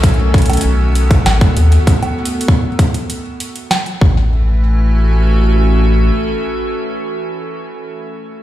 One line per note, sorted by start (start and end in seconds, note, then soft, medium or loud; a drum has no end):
0.00 0.58 B1 loud
0.00 1.87 D#3 medium
0.00 1.87 A3 medium
0.00 0.40 C#4 medium
0.00 1.87 F#4 medium
0.00 1.87 A4 medium
0.00 kick loud
0.00 closed hi-hat medium
0.09 closed hi-hat soft
0.14 closed hi-hat soft
0.34 kick loud
0.34 closed hi-hat soft
0.38 closed hi-hat soft
0.42 closed hi-hat soft
0.46 1.87 B3 medium
0.46 closed hi-hat medium
0.50 closed hi-hat medium
0.50 high bongo soft
0.53 closed hi-hat medium
0.57 closed hi-hat medium
0.61 1.19 B1 medium
0.61 closed hi-hat medium
0.95 closed hi-hat medium
1.11 kick loud
1.11 closed hi-hat soft
1.26 1.48 A1 medium
1.26 snare loud
1.26 closed hi-hat medium
1.26 high bongo medium
1.41 kick loud
1.41 closed hi-hat soft
1.57 1.79 D#2 loud
1.57 closed hi-hat medium
1.72 closed hi-hat soft
1.87 kick loud
1.87 closed hi-hat medium
2.03 closed hi-hat soft
2.03 high bongo soft
2.25 closed hi-hat medium
2.41 closed hi-hat medium
2.48 kick loud
2.79 kick loud
2.79 closed hi-hat medium
2.94 closed hi-hat soft
3.10 closed hi-hat medium
3.40 closed hi-hat medium
3.56 closed hi-hat soft
3.71 snare loud
3.71 closed hi-hat medium
3.71 high bongo medium
3.86 closed hi-hat soft
4.01 6.12 A1 medium
4.01 7.53 E3 medium
4.01 kick loud
4.11 7.53 A3 medium
4.50 7.53 C#4 medium
4.59 7.53 F#4 medium
4.69 7.53 A4 medium